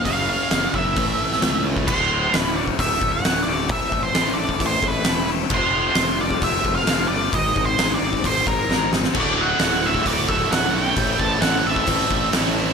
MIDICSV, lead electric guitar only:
0, 0, Header, 1, 2, 480
1, 0, Start_track
1, 0, Tempo, 454890
1, 60, Time_signature, 4, 2, 24, 8
1, 13435, End_track
2, 0, Start_track
2, 0, Title_t, "Lead electric guitar"
2, 0, Program_c, 0, 29
2, 63, Note_on_c, 0, 77, 75
2, 295, Note_off_c, 0, 77, 0
2, 312, Note_on_c, 0, 77, 82
2, 772, Note_off_c, 0, 77, 0
2, 795, Note_on_c, 0, 76, 108
2, 1720, Note_off_c, 0, 76, 0
2, 1979, Note_on_c, 0, 72, 90
2, 2496, Note_off_c, 0, 72, 0
2, 2496, Note_on_c, 0, 71, 90
2, 2703, Note_on_c, 0, 74, 101
2, 2722, Note_off_c, 0, 71, 0
2, 2768, Note_off_c, 0, 74, 0
2, 2954, Note_on_c, 0, 76, 94
2, 3277, Note_off_c, 0, 76, 0
2, 3292, Note_on_c, 0, 78, 99
2, 3606, Note_off_c, 0, 78, 0
2, 3615, Note_on_c, 0, 74, 84
2, 3918, Note_off_c, 0, 74, 0
2, 3922, Note_on_c, 0, 76, 99
2, 4241, Note_off_c, 0, 76, 0
2, 4251, Note_on_c, 0, 72, 89
2, 4565, Note_off_c, 0, 72, 0
2, 4575, Note_on_c, 0, 74, 86
2, 4856, Note_off_c, 0, 74, 0
2, 4922, Note_on_c, 0, 72, 89
2, 5137, Note_off_c, 0, 72, 0
2, 5150, Note_on_c, 0, 71, 84
2, 5573, Note_off_c, 0, 71, 0
2, 5849, Note_on_c, 0, 72, 92
2, 6512, Note_off_c, 0, 72, 0
2, 6553, Note_on_c, 0, 74, 111
2, 6791, Note_off_c, 0, 74, 0
2, 6795, Note_on_c, 0, 76, 104
2, 7117, Note_off_c, 0, 76, 0
2, 7125, Note_on_c, 0, 77, 110
2, 7441, Note_off_c, 0, 77, 0
2, 7471, Note_on_c, 0, 74, 94
2, 7753, Note_off_c, 0, 74, 0
2, 7757, Note_on_c, 0, 75, 97
2, 8047, Note_off_c, 0, 75, 0
2, 8077, Note_on_c, 0, 72, 82
2, 8381, Note_on_c, 0, 74, 87
2, 8397, Note_off_c, 0, 72, 0
2, 8710, Note_off_c, 0, 74, 0
2, 8719, Note_on_c, 0, 72, 89
2, 8938, Note_off_c, 0, 72, 0
2, 8942, Note_on_c, 0, 70, 75
2, 9387, Note_off_c, 0, 70, 0
2, 9710, Note_on_c, 0, 74, 80
2, 9931, Note_off_c, 0, 74, 0
2, 9931, Note_on_c, 0, 78, 84
2, 10162, Note_off_c, 0, 78, 0
2, 10185, Note_on_c, 0, 78, 88
2, 10403, Note_on_c, 0, 76, 95
2, 10409, Note_off_c, 0, 78, 0
2, 10626, Note_off_c, 0, 76, 0
2, 10630, Note_on_c, 0, 74, 89
2, 10850, Note_off_c, 0, 74, 0
2, 10854, Note_on_c, 0, 76, 88
2, 11093, Note_on_c, 0, 78, 96
2, 11105, Note_off_c, 0, 76, 0
2, 11320, Note_off_c, 0, 78, 0
2, 11358, Note_on_c, 0, 79, 109
2, 11813, Note_off_c, 0, 79, 0
2, 11817, Note_on_c, 0, 81, 100
2, 12043, Note_off_c, 0, 81, 0
2, 12048, Note_on_c, 0, 78, 105
2, 12302, Note_off_c, 0, 78, 0
2, 12314, Note_on_c, 0, 76, 94
2, 12986, Note_off_c, 0, 76, 0
2, 13435, End_track
0, 0, End_of_file